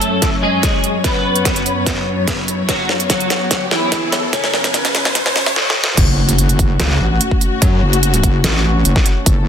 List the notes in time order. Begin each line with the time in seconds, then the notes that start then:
Already playing: F#2 F#3 A3 C#4 A4 C#5, riser
0.01 closed hi-hat
0.22 kick, snare, closed hi-hat
0.42 G#3 G#4
0.63 kick, snare, closed hi-hat
0.84 closed hi-hat
1.04 B3 B4, kick, snare, closed hi-hat
1.36 closed hi-hat
1.45 kick, snare, closed hi-hat
1.56 closed hi-hat
1.66 closed hi-hat
1.86 kick, snare, closed hi-hat
2.28 kick, snare, closed hi-hat
2.48 closed hi-hat
2.69 F#3 B3 F#4, kick, snare, closed hi-hat
2.89 snare
3.00 closed hi-hat
3.10 F#3 F#4, kick, snare, closed hi-hat
3.20 closed hi-hat
3.30 snare, closed hi-hat
3.51 kick, snare, closed hi-hat
3.71 E3 E4, snare
3.92 kick, snare, closed hi-hat
4.12 snare, closed hi-hat
4.33 C#3 C#4, kick, snare, closed hi-hat
4.44 snare
4.54 snare
4.64 snare, closed hi-hat
4.74 kick, snare, closed hi-hat
4.85 snare, closed hi-hat
4.95 snare, closed hi-hat
5.05 snare
5.15 kick, snare, closed hi-hat
5.26 snare
5.36 snare
5.46 snare
5.56 snare
5.70 snare
5.84 snare
5.97 F#1 A3 C#4 F#4, kick, closed hi-hat, crash, impact
6.29 closed hi-hat
6.38 closed hi-hat
6.49 closed hi-hat
6.59 F#1, kick, closed hi-hat
6.80 C#2, snare, closed hi-hat
7.00 A1
7.21 closed hi-hat
7.31 kick
7.41 closed hi-hat
7.62 F#2, kick, closed hi-hat
7.82 F#1
7.93 closed hi-hat
8.03 closed hi-hat
8.14 closed hi-hat
8.23 F#1, kick, closed hi-hat
8.44 A1, snare, closed hi-hat
8.85 F#1, closed hi-hat
8.96 kick, snare
9.06 closed hi-hat
9.26 F#1 A4, kick, closed hi-hat